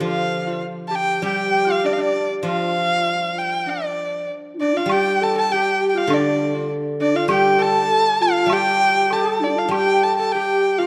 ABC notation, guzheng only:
X:1
M:2/4
L:1/8
Q:1/4=99
K:none
V:1 name="Guzheng" clef=bass
[D,F,]4 | G,4 | F,4- | F,2 z2 |
G,4 | D,4 | G,4 | G,4 |
G,4 |]